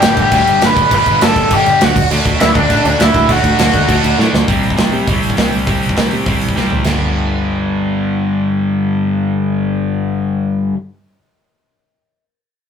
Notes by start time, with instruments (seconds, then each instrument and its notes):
Already playing: distorted electric guitar D4
0.00 picked electric bass G1, distorted electric guitar D3 G3, overdriven electric guitar G4 G5, snare, crash
0.04 distorted electric guitar G2
0.17 picked electric bass G1, overdriven electric guitar G4, kick, crash
0.21 overdriven electric guitar G5
0.31 picked electric bass D2, distorted electric guitar G2 D3 G3, kick, crash
0.47 picked electric bass G1, crash
0.61 picked electric bass G1, distorted electric guitar G2 D3 G3, overdriven electric guitar B4, snare, crash
0.66 overdriven electric guitar B5
0.77 picked electric bass G1, kick, crash
0.91 picked electric bass G1, distorted electric guitar G2 D3 G3, overdriven electric guitar B4 B5, kick, crash
1.06 picked electric bass G1, kick, crash
1.21 picked electric bass G1, distorted electric guitar G2 D3 G3, overdriven electric guitar A4 A5, snare, crash
1.36 picked electric bass G1, kick, crash
1.50 picked electric bass G1, distorted electric guitar G2 D3 G3, overdriven electric guitar G4, kick, crash
1.55 overdriven electric guitar G5
1.66 picked electric bass G1, crash
1.81 picked electric bass D2, distorted electric guitar G2 D3 G3, overdriven electric guitar F#4, snare, crash
1.85 overdriven electric guitar F#5
1.96 picked electric bass D2, kick, crash
2.11 picked electric bass D2, distorted electric guitar D3 A3 D4, crash
2.25 picked electric bass D2, kick, crash
2.40 picked electric bass D2, distorted electric guitar D3 A3 D4, overdriven electric guitar E4 E5, snare, crash
2.55 picked electric bass D2, overdriven electric guitar D4 D5, kick, crash
2.70 picked electric bass A1, distorted electric guitar D3 A3 D4, kick, crash
2.85 picked electric bass D2, overdriven electric guitar D4 D5, crash
2.99 picked electric bass D2, distorted electric guitar D3 A3 D4, overdriven electric guitar E4 E5, snare, crash
3.14 picked electric bass D2, kick, crash
3.29 picked electric bass D2, distorted electric guitar D3 A3 D4, overdriven electric guitar F#4 F#5, kick, crash
3.44 picked electric bass D2, kick, crash
3.59 picked electric bass D2, distorted electric guitar D3 A3 D4, snare, crash
3.74 picked electric bass D2, kick, crash
3.88 picked electric bass D2, distorted electric guitar D3 A3 D4, kick, crash
4.04 picked electric bass D2, crash
4.18 picked electric bass A2, distorted electric guitar D3 A3 D4, snare
4.33 picked electric bass D2, snare
4.47 picked electric bass C2, distorted electric guitar C3 G3 C4, kick, open hi-hat
4.63 open hi-hat
4.70 kick
4.77 picked electric bass C2, distorted electric guitar C3 G3 C4, snare, open hi-hat
4.92 picked electric bass C3, open hi-hat
5.07 picked electric bass C2, distorted electric guitar C3 G3 C4, kick, open hi-hat
5.23 open hi-hat
5.30 kick
5.37 picked electric bass C2, distorted electric guitar C3 G3 C4, snare, open hi-hat
5.52 open hi-hat
5.67 picked electric bass C2, distorted electric guitar C3 G3 C4, kick, open hi-hat
5.83 open hi-hat
5.89 kick
5.97 picked electric bass C2, distorted electric guitar C3 G3 C4, snare, open hi-hat
6.11 picked electric bass C3, open hi-hat
6.26 picked electric bass C2, distorted electric guitar C3 G3 C4, kick, open hi-hat
6.41 open hi-hat
6.49 kick
6.56 picked electric bass C2, distorted electric guitar C3 G3 C4, snare
6.70 floor tom
6.84 picked electric bass G1, distorted electric guitar G2 D3, snare, crash
6.88 distorted electric guitar G3